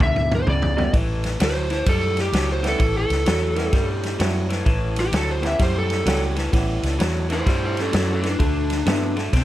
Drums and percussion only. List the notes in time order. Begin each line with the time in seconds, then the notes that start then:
0.00 kick, mid tom
0.16 mid tom
0.32 mid tom
0.47 floor tom
0.62 floor tom
0.78 floor tom
0.94 kick, ride
1.24 snare, ride
1.40 snare, ride
1.70 snare, ride
1.86 kick, ride
2.17 snare, ride
2.33 snare, ride
2.64 snare, ride
2.80 kick, ride
3.10 snare, ride
3.26 snare, ride
3.56 snare, ride
3.73 kick, snare, ride
4.03 snare, ride
4.20 snare, ride
4.50 snare, ride
4.66 kick, ride
4.96 snare, ride
5.13 snare, ride
5.43 snare, ride
5.59 kick, snare, ride
5.90 snare, ride
6.06 snare, ride
6.36 snare, ride
6.53 kick, snare, ride
6.83 snare, ride
7.00 snare, ride
7.30 snare, ride
7.46 kick, snare, ride
7.77 snare, ride
7.93 snare, ride
8.23 snare, ride
8.40 kick, ride
8.70 snare, ride
8.86 snare, ride
9.17 snare, ride
9.33 kick, snare, ride